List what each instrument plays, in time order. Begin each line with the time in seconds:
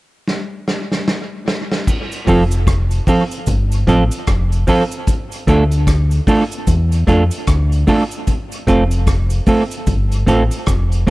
0.28 snare
0.68 snare
0.92 snare
1.08 snare
1.48 snare
1.72 snare
1.87 kick, crash, cabasa
2.12 closed hi-hat, cabasa
2.27 fingered electric bass F1, clean electric guitar F3 C4 F4 A4, kick, open hi-hat, cabasa
2.51 closed hi-hat, cabasa
2.67 kick, cross-stick, closed hi-hat, cabasa
2.91 closed hi-hat, cabasa
3.07 clean electric guitar F3 C4 F4 A4, kick, open hi-hat, cabasa
3.31 closed hi-hat, cabasa
3.46 fingered electric bass G1, kick, closed hi-hat, cabasa
3.72 closed hi-hat, cabasa
3.87 fingered electric bass A1, clean electric guitar F3 C4 F4 A4, kick, closed hi-hat, cabasa
4.11 closed hi-hat, cabasa
4.27 fingered electric bass F1, kick, cross-stick, closed hi-hat, cabasa
4.52 closed hi-hat, cabasa
4.67 clean electric guitar F3 C4 F4 A4, kick, open hi-hat, cabasa
4.91 closed hi-hat, cabasa
5.07 kick, closed hi-hat, cabasa
5.32 closed hi-hat, cabasa
5.47 fingered electric bass D2, clean electric guitar A3 D4 F4 A4, kick, closed hi-hat, cabasa
5.71 closed hi-hat, cabasa
5.87 kick, cross-stick, closed hi-hat, cabasa
6.11 closed hi-hat, cabasa
6.27 clean electric guitar A3 D4 F4 A4, kick, open hi-hat, cabasa
6.52 closed hi-hat, cabasa
6.67 fingered electric bass E2, kick, closed hi-hat, cabasa
6.92 closed hi-hat, cabasa
7.07 fingered electric bass F2, clean electric guitar A3 D4 F4 A4, kick, closed hi-hat, cabasa
7.31 closed hi-hat, cabasa
7.47 fingered electric bass D2, kick, cross-stick, closed hi-hat, cabasa
7.72 closed hi-hat, cabasa
7.87 clean electric guitar A3 D4 F4 A4, kick, open hi-hat, cabasa
8.11 closed hi-hat, cabasa
8.27 kick, closed hi-hat, cabasa
8.52 closed hi-hat, cabasa
8.67 fingered electric bass F1, clean electric guitar A3 C4 F4 A4, kick, closed hi-hat, cabasa
8.91 closed hi-hat, cabasa
9.07 kick, cross-stick, closed hi-hat, cabasa
9.30 closed hi-hat, cabasa
9.46 clean electric guitar A3 C4 F4 A4, kick, open hi-hat, cabasa
9.71 closed hi-hat, cabasa
9.87 fingered electric bass G1, kick, closed hi-hat, cabasa
10.12 closed hi-hat, cabasa
10.26 fingered electric bass A1, clean electric guitar A3 C4 F4 A4, kick, closed hi-hat, cabasa
10.51 closed hi-hat, cabasa
10.66 fingered electric bass F1, kick, cross-stick, closed hi-hat, cabasa
10.92 closed hi-hat, cabasa
11.07 clean electric guitar A3